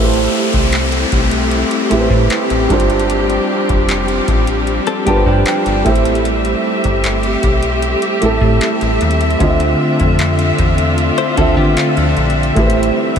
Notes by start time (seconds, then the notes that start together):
Already playing: A1 G3 A3 C4 E4 G4, downlifter
0.04 C5
0.13 closed hi-hat
0.53 C2, kick, closed hi-hat
0.72 clap, closed hi-hat
0.92 closed hi-hat
1.12 B1, kick, closed hi-hat
1.31 closed hi-hat
1.51 closed hi-hat
1.71 closed hi-hat
1.90 A1 A3 E4 G4, closed hi-hat
1.94 B4
2.01 C5
2.10 A2, kick
2.30 clap, closed hi-hat
2.50 A1, closed hi-hat
2.69 G1 F3 G3 D4 F4, kick, closed hi-hat
2.73 C5
2.80 closed hi-hat
2.90 closed hi-hat
3.00 closed hi-hat
3.10 closed hi-hat
3.30 closed hi-hat
3.69 F1, kick, closed hi-hat
3.89 clap, closed hi-hat
4.08 closed hi-hat
4.28 A1, kick, closed hi-hat
4.47 closed hi-hat
4.67 closed hi-hat
4.87 C4 A4, closed hi-hat
5.05 G1 G3 B3 D4 F4 G4 A5, kick, closed hi-hat
5.10 B4
5.16 C5
5.26 G2 F3 D4 G5, kick
5.46 G5, clap, closed hi-hat
5.66 G1, closed hi-hat
5.84 A1 A3 C4 E4 G4 E5, kick, closed hi-hat
5.89 C5
5.96 closed hi-hat
6.05 closed hi-hat
6.15 closed hi-hat
6.25 closed hi-hat
6.45 closed hi-hat
6.84 G1, kick, closed hi-hat
7.04 clap, closed hi-hat
7.23 closed hi-hat
7.43 B1, kick, closed hi-hat
7.63 closed hi-hat
7.82 closed hi-hat
8.02 closed hi-hat
8.21 A1 A3 E4 G4, closed hi-hat
8.25 A4
8.41 A2, kick
8.61 clap, closed hi-hat
8.81 A1, closed hi-hat
9.01 D#2, closed hi-hat
9.11 closed hi-hat
9.21 closed hi-hat
9.30 closed hi-hat
9.39 D2 D3 C4 D4 F4, kick, closed hi-hat
9.43 D#5
9.50 E5
9.60 closed hi-hat
10.00 F2, kick, closed hi-hat
10.19 clap, closed hi-hat
10.39 closed hi-hat
10.58 E2, kick, closed hi-hat
10.78 closed hi-hat
10.98 closed hi-hat
11.18 E4 C5, closed hi-hat
11.36 D2 D3 C4 F4 A4, kick, closed hi-hat
11.41 E5
11.57 D3 B3 G4, kick
11.77 A3 F4, clap, closed hi-hat
11.97 D2 F3 D4, closed hi-hat
12.17 A#1, closed hi-hat
12.30 closed hi-hat
12.43 closed hi-hat
12.55 A1 E3 G3 A3 E4 G4, kick, closed hi-hat
12.60 B4
12.66 C5, closed hi-hat
12.83 closed hi-hat
13.16 closed hi-hat